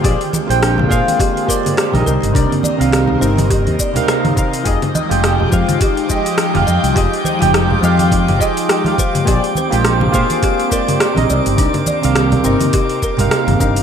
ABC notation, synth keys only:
X:1
M:4/4
L:1/16
Q:"Swing 16ths" 1/4=104
K:Fdor
V:1 name="Synth keys"
[B,FGAcd] z2 [A,B,Fcg]3 [B,FAcfg]4 [A,B,FGcd]3 [C,CEBe]3 | [C,CEBd] z2 [C,E,CBf]3 [C,CEB]4 z [C,CEBf]3 [C,CEBf]2 | [F,FGAe] z2 [F,FGAg]3 [F,A,FGf]4 [F,A,FGe]3 [F,A,FGf]3 | [F,FGAe] z2 [F,A,FGg]3 [F,A,FGf]4 [F,FGAe]3 [F,A,FGf]3 |
[B,FGAcd] z2 [A,B,FGcg]3 [B,FGAcf]4 [A,B,FGcd]3 [C,CEBe]3 | [C,CEBd] z2 [C,E,CBf]3 [C,CEB]4 z [C,CEBf]3 [C,CEBf]2 |]